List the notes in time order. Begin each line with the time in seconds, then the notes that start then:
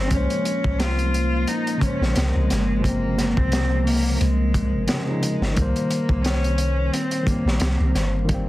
Already playing: D#3 G3 A#3 C4 C5
0.08 C2 F3 C#4, kick, closed hi-hat
0.12 G#3 C#4
0.17 C5
0.30 closed hi-hat
0.45 closed hi-hat
0.64 C2, kick
0.80 F4, snare, closed hi-hat
0.99 closed hi-hat
1.14 closed hi-hat
1.47 D#4, closed hi-hat
1.67 closed hi-hat
1.77 C#3 F3
1.81 G#3 C#4, kick, closed hi-hat
1.86 C5
2.01 A#1, snare
2.15 C2 G#3, snare, closed hi-hat
2.36 C2
2.50 G1, snare, closed hi-hat
2.79 C3 F3
2.83 G#3 A#3, kick, closed hi-hat
2.89 C4
3.18 snare, closed hi-hat
3.36 C2 C4, kick
3.52 snare, closed hi-hat
3.84 A#3, open hi-hat
4.18 C2 G#3, closed hi-hat
4.54 kick, closed hi-hat
4.74 G1
4.86 C#3 F3 G#3, snare, closed hi-hat
4.91 G#3 C#4
5.06 C#3 F3 G#3
5.10 D#4
5.23 closed hi-hat
5.41 G1, snare
5.53 D#3 G3 A#3 C5, closed hi-hat
5.57 C2 A#3, kick
5.62 C5
5.76 closed hi-hat
5.91 closed hi-hat
6.09 C2, kick
6.22 C#4, snare, closed hi-hat
6.44 closed hi-hat
6.58 closed hi-hat
6.93 C4, closed hi-hat
7.11 closed hi-hat
7.23 D#3 G3 A#3, kick
7.28 A#3, closed hi-hat
7.32 C4
7.45 A#1, snare
7.60 C2, snare, closed hi-hat
7.80 C2
7.95 G1, snare, closed hi-hat
8.25 D#3 G3, closed hi-hat
8.29 A#3, kick
8.34 C4